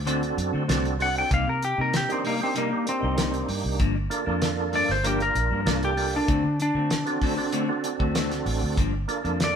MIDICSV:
0, 0, Header, 1, 7, 480
1, 0, Start_track
1, 0, Key_signature, -2, "minor"
1, 0, Tempo, 622407
1, 1010, Time_signature, 4, 2, 24, 8
1, 7370, End_track
2, 0, Start_track
2, 0, Title_t, "Electric slide guitar"
2, 0, Program_c, 0, 29
2, 788, Note_on_c, 0, 78, 106
2, 899, Note_off_c, 0, 78, 0
2, 913, Note_on_c, 0, 79, 89
2, 1016, Note_off_c, 0, 79, 0
2, 1031, Note_on_c, 0, 77, 90
2, 1140, Note_off_c, 0, 77, 0
2, 1152, Note_on_c, 0, 70, 86
2, 1255, Note_off_c, 0, 70, 0
2, 1269, Note_on_c, 0, 67, 98
2, 1379, Note_off_c, 0, 67, 0
2, 1398, Note_on_c, 0, 70, 87
2, 1499, Note_off_c, 0, 70, 0
2, 1516, Note_on_c, 0, 67, 92
2, 1622, Note_off_c, 0, 67, 0
2, 1637, Note_on_c, 0, 60, 80
2, 1738, Note_off_c, 0, 60, 0
2, 1749, Note_on_c, 0, 58, 87
2, 1858, Note_off_c, 0, 58, 0
2, 1877, Note_on_c, 0, 60, 87
2, 1977, Note_off_c, 0, 60, 0
2, 1990, Note_on_c, 0, 58, 89
2, 2212, Note_off_c, 0, 58, 0
2, 2227, Note_on_c, 0, 60, 96
2, 2683, Note_off_c, 0, 60, 0
2, 3667, Note_on_c, 0, 74, 106
2, 3776, Note_off_c, 0, 74, 0
2, 3790, Note_on_c, 0, 72, 84
2, 3893, Note_off_c, 0, 72, 0
2, 3909, Note_on_c, 0, 67, 82
2, 4017, Note_off_c, 0, 67, 0
2, 4028, Note_on_c, 0, 70, 93
2, 4484, Note_off_c, 0, 70, 0
2, 4508, Note_on_c, 0, 67, 98
2, 4731, Note_off_c, 0, 67, 0
2, 4752, Note_on_c, 0, 62, 87
2, 5086, Note_off_c, 0, 62, 0
2, 5105, Note_on_c, 0, 62, 100
2, 6027, Note_off_c, 0, 62, 0
2, 7278, Note_on_c, 0, 74, 103
2, 7370, Note_off_c, 0, 74, 0
2, 7370, End_track
3, 0, Start_track
3, 0, Title_t, "Tonewheel organ"
3, 0, Program_c, 1, 16
3, 49, Note_on_c, 1, 62, 72
3, 50, Note_on_c, 1, 60, 80
3, 52, Note_on_c, 1, 66, 71
3, 55, Note_on_c, 1, 69, 94
3, 488, Note_off_c, 1, 60, 0
3, 488, Note_off_c, 1, 62, 0
3, 489, Note_off_c, 1, 66, 0
3, 490, Note_off_c, 1, 69, 0
3, 525, Note_on_c, 1, 60, 93
3, 526, Note_on_c, 1, 62, 85
3, 528, Note_on_c, 1, 66, 82
3, 532, Note_on_c, 1, 69, 106
3, 746, Note_off_c, 1, 60, 0
3, 747, Note_off_c, 1, 62, 0
3, 748, Note_off_c, 1, 66, 0
3, 750, Note_off_c, 1, 69, 0
3, 764, Note_on_c, 1, 60, 73
3, 769, Note_on_c, 1, 62, 66
3, 769, Note_on_c, 1, 66, 65
3, 770, Note_on_c, 1, 69, 76
3, 1007, Note_off_c, 1, 60, 0
3, 1009, Note_off_c, 1, 62, 0
3, 1009, Note_off_c, 1, 66, 0
3, 1010, Note_off_c, 1, 69, 0
3, 1609, Note_on_c, 1, 58, 83
3, 1612, Note_on_c, 1, 62, 75
3, 1613, Note_on_c, 1, 63, 72
3, 1616, Note_on_c, 1, 67, 99
3, 1828, Note_off_c, 1, 58, 0
3, 1830, Note_off_c, 1, 62, 0
3, 1830, Note_off_c, 1, 63, 0
3, 1832, Note_off_c, 1, 67, 0
3, 1852, Note_on_c, 1, 58, 70
3, 1852, Note_on_c, 1, 62, 62
3, 1854, Note_on_c, 1, 63, 58
3, 1857, Note_on_c, 1, 67, 78
3, 2070, Note_off_c, 1, 58, 0
3, 2070, Note_off_c, 1, 62, 0
3, 2070, Note_off_c, 1, 63, 0
3, 2072, Note_off_c, 1, 67, 0
3, 2088, Note_on_c, 1, 58, 64
3, 2093, Note_on_c, 1, 62, 60
3, 2094, Note_on_c, 1, 63, 56
3, 2097, Note_on_c, 1, 67, 74
3, 2925, Note_off_c, 1, 58, 0
3, 2928, Note_off_c, 1, 62, 0
3, 2928, Note_off_c, 1, 63, 0
3, 2930, Note_off_c, 1, 67, 0
3, 3162, Note_on_c, 1, 58, 89
3, 3164, Note_on_c, 1, 62, 80
3, 3164, Note_on_c, 1, 65, 75
3, 3167, Note_on_c, 1, 69, 96
3, 3276, Note_off_c, 1, 58, 0
3, 3278, Note_off_c, 1, 62, 0
3, 3278, Note_off_c, 1, 65, 0
3, 3279, Note_off_c, 1, 69, 0
3, 3287, Note_on_c, 1, 58, 95
3, 3290, Note_on_c, 1, 62, 88
3, 3292, Note_on_c, 1, 65, 97
3, 3292, Note_on_c, 1, 69, 113
3, 3832, Note_off_c, 1, 58, 0
3, 3834, Note_off_c, 1, 62, 0
3, 3834, Note_off_c, 1, 65, 0
3, 3835, Note_off_c, 1, 69, 0
3, 3884, Note_on_c, 1, 62, 62
3, 3885, Note_on_c, 1, 58, 75
3, 3887, Note_on_c, 1, 65, 64
3, 3891, Note_on_c, 1, 70, 73
3, 4322, Note_off_c, 1, 62, 0
3, 4323, Note_off_c, 1, 58, 0
3, 4324, Note_off_c, 1, 65, 0
3, 4326, Note_off_c, 1, 70, 0
3, 4360, Note_on_c, 1, 58, 85
3, 4362, Note_on_c, 1, 62, 81
3, 4365, Note_on_c, 1, 65, 71
3, 4366, Note_on_c, 1, 69, 96
3, 4582, Note_off_c, 1, 58, 0
3, 4583, Note_off_c, 1, 62, 0
3, 4584, Note_off_c, 1, 65, 0
3, 4585, Note_off_c, 1, 69, 0
3, 4599, Note_on_c, 1, 58, 72
3, 4600, Note_on_c, 1, 62, 64
3, 4605, Note_on_c, 1, 65, 68
3, 4605, Note_on_c, 1, 69, 83
3, 4842, Note_off_c, 1, 58, 0
3, 4842, Note_off_c, 1, 62, 0
3, 4845, Note_off_c, 1, 65, 0
3, 4845, Note_off_c, 1, 69, 0
3, 5442, Note_on_c, 1, 60, 83
3, 5444, Note_on_c, 1, 62, 80
3, 5446, Note_on_c, 1, 66, 74
3, 5450, Note_on_c, 1, 69, 95
3, 5663, Note_off_c, 1, 60, 0
3, 5664, Note_off_c, 1, 62, 0
3, 5665, Note_off_c, 1, 66, 0
3, 5667, Note_off_c, 1, 69, 0
3, 5683, Note_on_c, 1, 60, 75
3, 5685, Note_on_c, 1, 62, 74
3, 5687, Note_on_c, 1, 66, 71
3, 5690, Note_on_c, 1, 69, 96
3, 5904, Note_off_c, 1, 60, 0
3, 5904, Note_off_c, 1, 62, 0
3, 5906, Note_off_c, 1, 66, 0
3, 5907, Note_off_c, 1, 69, 0
3, 5924, Note_on_c, 1, 60, 81
3, 5927, Note_on_c, 1, 62, 77
3, 5929, Note_on_c, 1, 66, 73
3, 5931, Note_on_c, 1, 69, 88
3, 6764, Note_off_c, 1, 60, 0
3, 6765, Note_off_c, 1, 62, 0
3, 6766, Note_off_c, 1, 66, 0
3, 6767, Note_off_c, 1, 69, 0
3, 7000, Note_on_c, 1, 58, 84
3, 7003, Note_on_c, 1, 62, 76
3, 7005, Note_on_c, 1, 65, 69
3, 7007, Note_on_c, 1, 69, 84
3, 7116, Note_off_c, 1, 58, 0
3, 7117, Note_off_c, 1, 62, 0
3, 7118, Note_off_c, 1, 65, 0
3, 7119, Note_off_c, 1, 69, 0
3, 7126, Note_on_c, 1, 58, 80
3, 7128, Note_on_c, 1, 62, 67
3, 7130, Note_on_c, 1, 65, 71
3, 7133, Note_on_c, 1, 69, 83
3, 7370, Note_off_c, 1, 58, 0
3, 7370, Note_off_c, 1, 62, 0
3, 7370, Note_off_c, 1, 65, 0
3, 7370, Note_off_c, 1, 69, 0
3, 7370, End_track
4, 0, Start_track
4, 0, Title_t, "Clean electric guitar"
4, 0, Program_c, 2, 27
4, 41, Note_on_c, 2, 50, 79
4, 47, Note_on_c, 2, 57, 85
4, 49, Note_on_c, 2, 60, 89
4, 53, Note_on_c, 2, 66, 92
4, 160, Note_off_c, 2, 66, 0
4, 164, Note_off_c, 2, 60, 0
4, 168, Note_off_c, 2, 57, 0
4, 169, Note_off_c, 2, 50, 0
4, 408, Note_on_c, 2, 66, 57
4, 419, Note_on_c, 2, 60, 60
4, 426, Note_on_c, 2, 57, 48
4, 527, Note_off_c, 2, 57, 0
4, 527, Note_off_c, 2, 66, 0
4, 529, Note_on_c, 2, 50, 67
4, 530, Note_off_c, 2, 60, 0
4, 536, Note_on_c, 2, 57, 66
4, 539, Note_on_c, 2, 60, 72
4, 545, Note_on_c, 2, 66, 70
4, 641, Note_off_c, 2, 66, 0
4, 647, Note_off_c, 2, 60, 0
4, 649, Note_off_c, 2, 57, 0
4, 653, Note_off_c, 2, 50, 0
4, 1008, Note_on_c, 2, 48, 72
4, 1011, Note_on_c, 2, 55, 79
4, 1014, Note_on_c, 2, 58, 83
4, 1019, Note_on_c, 2, 63, 78
4, 1122, Note_off_c, 2, 63, 0
4, 1127, Note_off_c, 2, 58, 0
4, 1131, Note_off_c, 2, 55, 0
4, 1132, Note_off_c, 2, 48, 0
4, 1370, Note_on_c, 2, 63, 57
4, 1379, Note_on_c, 2, 58, 56
4, 1387, Note_on_c, 2, 55, 42
4, 1481, Note_off_c, 2, 55, 0
4, 1483, Note_off_c, 2, 58, 0
4, 1485, Note_off_c, 2, 63, 0
4, 1723, Note_on_c, 2, 48, 66
4, 1730, Note_on_c, 2, 55, 59
4, 1734, Note_on_c, 2, 58, 59
4, 1739, Note_on_c, 2, 63, 70
4, 1838, Note_off_c, 2, 63, 0
4, 1843, Note_off_c, 2, 58, 0
4, 1847, Note_off_c, 2, 55, 0
4, 1849, Note_off_c, 2, 48, 0
4, 1963, Note_on_c, 2, 48, 79
4, 1968, Note_on_c, 2, 55, 81
4, 1971, Note_on_c, 2, 58, 88
4, 1975, Note_on_c, 2, 63, 87
4, 2080, Note_off_c, 2, 63, 0
4, 2083, Note_off_c, 2, 58, 0
4, 2087, Note_off_c, 2, 55, 0
4, 2089, Note_off_c, 2, 48, 0
4, 2326, Note_on_c, 2, 63, 59
4, 2335, Note_on_c, 2, 58, 47
4, 2343, Note_on_c, 2, 55, 42
4, 2440, Note_off_c, 2, 55, 0
4, 2441, Note_on_c, 2, 48, 67
4, 2444, Note_off_c, 2, 58, 0
4, 2445, Note_off_c, 2, 63, 0
4, 2449, Note_on_c, 2, 55, 56
4, 2453, Note_on_c, 2, 58, 64
4, 2458, Note_on_c, 2, 63, 66
4, 2562, Note_off_c, 2, 63, 0
4, 2566, Note_off_c, 2, 58, 0
4, 2567, Note_off_c, 2, 48, 0
4, 2568, Note_off_c, 2, 55, 0
4, 2922, Note_on_c, 2, 43, 84
4, 2926, Note_on_c, 2, 53, 85
4, 2930, Note_on_c, 2, 58, 92
4, 2933, Note_on_c, 2, 62, 97
4, 3042, Note_off_c, 2, 62, 0
4, 3048, Note_off_c, 2, 43, 0
4, 3048, Note_off_c, 2, 58, 0
4, 3050, Note_off_c, 2, 53, 0
4, 3285, Note_on_c, 2, 62, 58
4, 3296, Note_on_c, 2, 58, 54
4, 3302, Note_on_c, 2, 53, 55
4, 3398, Note_off_c, 2, 53, 0
4, 3401, Note_off_c, 2, 58, 0
4, 3404, Note_off_c, 2, 62, 0
4, 3642, Note_on_c, 2, 43, 66
4, 3650, Note_on_c, 2, 53, 59
4, 3654, Note_on_c, 2, 58, 65
4, 3660, Note_on_c, 2, 62, 69
4, 3760, Note_off_c, 2, 62, 0
4, 3765, Note_off_c, 2, 58, 0
4, 3767, Note_off_c, 2, 43, 0
4, 3767, Note_off_c, 2, 53, 0
4, 3884, Note_on_c, 2, 43, 79
4, 3888, Note_on_c, 2, 53, 81
4, 3893, Note_on_c, 2, 58, 87
4, 3895, Note_on_c, 2, 62, 98
4, 4005, Note_off_c, 2, 62, 0
4, 4008, Note_off_c, 2, 43, 0
4, 4009, Note_off_c, 2, 58, 0
4, 4010, Note_off_c, 2, 53, 0
4, 4247, Note_on_c, 2, 62, 55
4, 4256, Note_on_c, 2, 58, 49
4, 4266, Note_on_c, 2, 53, 46
4, 4362, Note_off_c, 2, 53, 0
4, 4364, Note_off_c, 2, 62, 0
4, 4364, Note_on_c, 2, 43, 66
4, 4367, Note_off_c, 2, 58, 0
4, 4371, Note_on_c, 2, 53, 69
4, 4376, Note_on_c, 2, 58, 61
4, 4379, Note_on_c, 2, 62, 63
4, 4484, Note_off_c, 2, 62, 0
4, 4488, Note_off_c, 2, 43, 0
4, 4488, Note_off_c, 2, 58, 0
4, 4492, Note_off_c, 2, 53, 0
4, 4843, Note_on_c, 2, 50, 81
4, 4847, Note_on_c, 2, 57, 76
4, 4851, Note_on_c, 2, 60, 84
4, 4854, Note_on_c, 2, 66, 80
4, 4960, Note_off_c, 2, 66, 0
4, 4964, Note_off_c, 2, 60, 0
4, 4968, Note_off_c, 2, 50, 0
4, 4969, Note_off_c, 2, 57, 0
4, 5206, Note_on_c, 2, 66, 60
4, 5216, Note_on_c, 2, 60, 53
4, 5222, Note_on_c, 2, 57, 44
4, 5323, Note_off_c, 2, 57, 0
4, 5324, Note_off_c, 2, 66, 0
4, 5325, Note_off_c, 2, 60, 0
4, 5566, Note_on_c, 2, 50, 64
4, 5573, Note_on_c, 2, 57, 64
4, 5578, Note_on_c, 2, 60, 75
4, 5582, Note_on_c, 2, 66, 69
4, 5681, Note_off_c, 2, 66, 0
4, 5687, Note_off_c, 2, 60, 0
4, 5689, Note_off_c, 2, 50, 0
4, 5691, Note_off_c, 2, 57, 0
4, 5804, Note_on_c, 2, 50, 86
4, 5809, Note_on_c, 2, 57, 91
4, 5813, Note_on_c, 2, 60, 96
4, 5818, Note_on_c, 2, 66, 99
4, 5919, Note_off_c, 2, 66, 0
4, 5925, Note_off_c, 2, 60, 0
4, 5928, Note_off_c, 2, 50, 0
4, 5928, Note_off_c, 2, 57, 0
4, 6165, Note_on_c, 2, 66, 68
4, 6173, Note_on_c, 2, 60, 51
4, 6181, Note_on_c, 2, 57, 47
4, 6280, Note_off_c, 2, 57, 0
4, 6284, Note_off_c, 2, 66, 0
4, 6284, Note_on_c, 2, 50, 76
4, 6287, Note_off_c, 2, 60, 0
4, 6289, Note_on_c, 2, 57, 77
4, 6295, Note_on_c, 2, 60, 73
4, 6300, Note_on_c, 2, 66, 69
4, 6403, Note_off_c, 2, 66, 0
4, 6408, Note_off_c, 2, 60, 0
4, 6409, Note_off_c, 2, 50, 0
4, 6411, Note_off_c, 2, 57, 0
4, 6765, Note_on_c, 2, 43, 75
4, 6769, Note_on_c, 2, 53, 80
4, 6773, Note_on_c, 2, 58, 77
4, 6775, Note_on_c, 2, 62, 80
4, 6881, Note_off_c, 2, 62, 0
4, 6886, Note_off_c, 2, 58, 0
4, 6888, Note_off_c, 2, 53, 0
4, 6889, Note_off_c, 2, 43, 0
4, 7127, Note_on_c, 2, 62, 52
4, 7137, Note_on_c, 2, 58, 42
4, 7144, Note_on_c, 2, 53, 40
4, 7237, Note_off_c, 2, 53, 0
4, 7241, Note_off_c, 2, 58, 0
4, 7243, Note_off_c, 2, 62, 0
4, 7370, End_track
5, 0, Start_track
5, 0, Title_t, "Fingered electric bass"
5, 0, Program_c, 3, 33
5, 0, Note_on_c, 3, 38, 74
5, 244, Note_off_c, 3, 38, 0
5, 289, Note_on_c, 3, 42, 88
5, 396, Note_off_c, 3, 42, 0
5, 412, Note_on_c, 3, 50, 97
5, 513, Note_off_c, 3, 50, 0
5, 530, Note_on_c, 3, 36, 89
5, 944, Note_off_c, 3, 36, 0
5, 1011, Note_on_c, 3, 36, 101
5, 1117, Note_off_c, 3, 36, 0
5, 1137, Note_on_c, 3, 48, 84
5, 1342, Note_off_c, 3, 48, 0
5, 1374, Note_on_c, 3, 48, 97
5, 1581, Note_off_c, 3, 48, 0
5, 2334, Note_on_c, 3, 36, 87
5, 2641, Note_off_c, 3, 36, 0
5, 2688, Note_on_c, 3, 43, 83
5, 2794, Note_off_c, 3, 43, 0
5, 2811, Note_on_c, 3, 36, 83
5, 2911, Note_off_c, 3, 36, 0
5, 2928, Note_on_c, 3, 31, 99
5, 3134, Note_off_c, 3, 31, 0
5, 3293, Note_on_c, 3, 41, 84
5, 3706, Note_off_c, 3, 41, 0
5, 3773, Note_on_c, 3, 31, 83
5, 4079, Note_off_c, 3, 31, 0
5, 4126, Note_on_c, 3, 34, 91
5, 4232, Note_off_c, 3, 34, 0
5, 4250, Note_on_c, 3, 43, 93
5, 4350, Note_off_c, 3, 43, 0
5, 4362, Note_on_c, 3, 36, 91
5, 4778, Note_off_c, 3, 36, 0
5, 4848, Note_on_c, 3, 38, 99
5, 4953, Note_off_c, 3, 38, 0
5, 4963, Note_on_c, 3, 50, 84
5, 5172, Note_off_c, 3, 50, 0
5, 5205, Note_on_c, 3, 50, 92
5, 5414, Note_off_c, 3, 50, 0
5, 6170, Note_on_c, 3, 38, 84
5, 6478, Note_off_c, 3, 38, 0
5, 6522, Note_on_c, 3, 33, 92
5, 6631, Note_off_c, 3, 33, 0
5, 6651, Note_on_c, 3, 38, 95
5, 6751, Note_off_c, 3, 38, 0
5, 6768, Note_on_c, 3, 31, 89
5, 6975, Note_off_c, 3, 31, 0
5, 7131, Note_on_c, 3, 41, 78
5, 7370, Note_off_c, 3, 41, 0
5, 7370, End_track
6, 0, Start_track
6, 0, Title_t, "Muted clean electric guitar strokes"
6, 169, Note_on_c, 9, 29, 51
6, 246, Note_off_c, 9, 29, 0
6, 288, Note_on_c, 9, 29, 45
6, 365, Note_off_c, 9, 29, 0
6, 650, Note_on_c, 9, 29, 44
6, 727, Note_off_c, 9, 29, 0
6, 765, Note_on_c, 9, 29, 33
6, 843, Note_off_c, 9, 29, 0
6, 1131, Note_on_c, 9, 29, 50
6, 1208, Note_off_c, 9, 29, 0
6, 1249, Note_on_c, 9, 29, 40
6, 1326, Note_off_c, 9, 29, 0
6, 1487, Note_on_c, 9, 29, 43
6, 1564, Note_off_c, 9, 29, 0
6, 1847, Note_on_c, 9, 29, 44
6, 1924, Note_off_c, 9, 29, 0
6, 2089, Note_on_c, 9, 29, 47
6, 2166, Note_off_c, 9, 29, 0
6, 2205, Note_on_c, 9, 29, 37
6, 2282, Note_off_c, 9, 29, 0
6, 2571, Note_on_c, 9, 29, 48
6, 2648, Note_off_c, 9, 29, 0
6, 2684, Note_on_c, 9, 29, 40
6, 2762, Note_off_c, 9, 29, 0
6, 3051, Note_on_c, 9, 29, 52
6, 3128, Note_off_c, 9, 29, 0
6, 3164, Note_on_c, 9, 29, 42
6, 3241, Note_off_c, 9, 29, 0
6, 3405, Note_on_c, 9, 29, 54
6, 3482, Note_off_c, 9, 29, 0
6, 3769, Note_on_c, 9, 29, 50
6, 3846, Note_off_c, 9, 29, 0
6, 4014, Note_on_c, 9, 29, 42
6, 4091, Note_off_c, 9, 29, 0
6, 4130, Note_on_c, 9, 29, 42
6, 4207, Note_off_c, 9, 29, 0
6, 4493, Note_on_c, 9, 29, 48
6, 4570, Note_off_c, 9, 29, 0
6, 4607, Note_on_c, 9, 29, 37
6, 4684, Note_off_c, 9, 29, 0
6, 4969, Note_on_c, 9, 29, 44
6, 5047, Note_off_c, 9, 29, 0
6, 5086, Note_on_c, 9, 29, 37
6, 5163, Note_off_c, 9, 29, 0
6, 5329, Note_on_c, 9, 29, 43
6, 5406, Note_off_c, 9, 29, 0
6, 5690, Note_on_c, 9, 29, 55
6, 5767, Note_off_c, 9, 29, 0
6, 5928, Note_on_c, 9, 29, 49
6, 6005, Note_off_c, 9, 29, 0
6, 6045, Note_on_c, 9, 29, 41
6, 6122, Note_off_c, 9, 29, 0
6, 6412, Note_on_c, 9, 29, 52
6, 6489, Note_off_c, 9, 29, 0
6, 6527, Note_on_c, 9, 29, 41
6, 6604, Note_off_c, 9, 29, 0
6, 6891, Note_on_c, 9, 29, 50
6, 6968, Note_off_c, 9, 29, 0
6, 7010, Note_on_c, 9, 29, 37
6, 7087, Note_off_c, 9, 29, 0
6, 7243, Note_on_c, 9, 29, 41
6, 7321, Note_off_c, 9, 29, 0
6, 7370, End_track
7, 0, Start_track
7, 0, Title_t, "Drums"
7, 55, Note_on_c, 9, 42, 86
7, 132, Note_off_c, 9, 42, 0
7, 176, Note_on_c, 9, 42, 37
7, 253, Note_off_c, 9, 42, 0
7, 295, Note_on_c, 9, 42, 56
7, 372, Note_off_c, 9, 42, 0
7, 533, Note_on_c, 9, 42, 77
7, 537, Note_on_c, 9, 38, 112
7, 610, Note_off_c, 9, 42, 0
7, 614, Note_off_c, 9, 38, 0
7, 658, Note_on_c, 9, 42, 40
7, 735, Note_off_c, 9, 42, 0
7, 773, Note_on_c, 9, 46, 72
7, 850, Note_off_c, 9, 46, 0
7, 1011, Note_on_c, 9, 36, 109
7, 1012, Note_on_c, 9, 42, 80
7, 1089, Note_off_c, 9, 36, 0
7, 1089, Note_off_c, 9, 42, 0
7, 1253, Note_on_c, 9, 42, 61
7, 1330, Note_off_c, 9, 42, 0
7, 1492, Note_on_c, 9, 42, 85
7, 1496, Note_on_c, 9, 38, 114
7, 1569, Note_off_c, 9, 42, 0
7, 1573, Note_off_c, 9, 38, 0
7, 1619, Note_on_c, 9, 42, 47
7, 1696, Note_off_c, 9, 42, 0
7, 1732, Note_on_c, 9, 46, 71
7, 1809, Note_off_c, 9, 46, 0
7, 1972, Note_on_c, 9, 42, 97
7, 2049, Note_off_c, 9, 42, 0
7, 2212, Note_on_c, 9, 42, 68
7, 2289, Note_off_c, 9, 42, 0
7, 2450, Note_on_c, 9, 42, 89
7, 2454, Note_on_c, 9, 38, 114
7, 2527, Note_off_c, 9, 42, 0
7, 2531, Note_off_c, 9, 38, 0
7, 2573, Note_on_c, 9, 42, 39
7, 2651, Note_off_c, 9, 42, 0
7, 2688, Note_on_c, 9, 46, 77
7, 2765, Note_off_c, 9, 46, 0
7, 2928, Note_on_c, 9, 42, 85
7, 2929, Note_on_c, 9, 36, 104
7, 3005, Note_off_c, 9, 42, 0
7, 3006, Note_off_c, 9, 36, 0
7, 3170, Note_on_c, 9, 42, 60
7, 3247, Note_off_c, 9, 42, 0
7, 3406, Note_on_c, 9, 42, 87
7, 3410, Note_on_c, 9, 38, 117
7, 3483, Note_off_c, 9, 42, 0
7, 3487, Note_off_c, 9, 38, 0
7, 3647, Note_on_c, 9, 46, 70
7, 3724, Note_off_c, 9, 46, 0
7, 3776, Note_on_c, 9, 38, 34
7, 3853, Note_off_c, 9, 38, 0
7, 3890, Note_on_c, 9, 42, 88
7, 3967, Note_off_c, 9, 42, 0
7, 4013, Note_on_c, 9, 42, 40
7, 4090, Note_off_c, 9, 42, 0
7, 4129, Note_on_c, 9, 42, 62
7, 4206, Note_off_c, 9, 42, 0
7, 4369, Note_on_c, 9, 42, 82
7, 4373, Note_on_c, 9, 38, 106
7, 4446, Note_off_c, 9, 42, 0
7, 4450, Note_off_c, 9, 38, 0
7, 4494, Note_on_c, 9, 42, 41
7, 4571, Note_off_c, 9, 42, 0
7, 4607, Note_on_c, 9, 46, 79
7, 4684, Note_off_c, 9, 46, 0
7, 4846, Note_on_c, 9, 36, 112
7, 4846, Note_on_c, 9, 42, 80
7, 4923, Note_off_c, 9, 42, 0
7, 4924, Note_off_c, 9, 36, 0
7, 5087, Note_on_c, 9, 42, 62
7, 5164, Note_off_c, 9, 42, 0
7, 5325, Note_on_c, 9, 42, 80
7, 5329, Note_on_c, 9, 38, 119
7, 5402, Note_off_c, 9, 42, 0
7, 5406, Note_off_c, 9, 38, 0
7, 5449, Note_on_c, 9, 42, 44
7, 5526, Note_off_c, 9, 42, 0
7, 5564, Note_on_c, 9, 46, 72
7, 5565, Note_on_c, 9, 36, 82
7, 5641, Note_off_c, 9, 46, 0
7, 5642, Note_off_c, 9, 36, 0
7, 5803, Note_on_c, 9, 42, 93
7, 5880, Note_off_c, 9, 42, 0
7, 6045, Note_on_c, 9, 42, 68
7, 6122, Note_off_c, 9, 42, 0
7, 6170, Note_on_c, 9, 36, 77
7, 6247, Note_off_c, 9, 36, 0
7, 6286, Note_on_c, 9, 42, 89
7, 6290, Note_on_c, 9, 38, 120
7, 6363, Note_off_c, 9, 42, 0
7, 6367, Note_off_c, 9, 38, 0
7, 6412, Note_on_c, 9, 42, 43
7, 6416, Note_on_c, 9, 38, 34
7, 6489, Note_off_c, 9, 42, 0
7, 6493, Note_off_c, 9, 38, 0
7, 6526, Note_on_c, 9, 46, 75
7, 6603, Note_off_c, 9, 46, 0
7, 6767, Note_on_c, 9, 36, 99
7, 6768, Note_on_c, 9, 42, 78
7, 6844, Note_off_c, 9, 36, 0
7, 6846, Note_off_c, 9, 42, 0
7, 7008, Note_on_c, 9, 42, 54
7, 7085, Note_off_c, 9, 42, 0
7, 7133, Note_on_c, 9, 42, 33
7, 7210, Note_off_c, 9, 42, 0
7, 7250, Note_on_c, 9, 42, 80
7, 7253, Note_on_c, 9, 38, 100
7, 7327, Note_off_c, 9, 42, 0
7, 7330, Note_off_c, 9, 38, 0
7, 7370, End_track
0, 0, End_of_file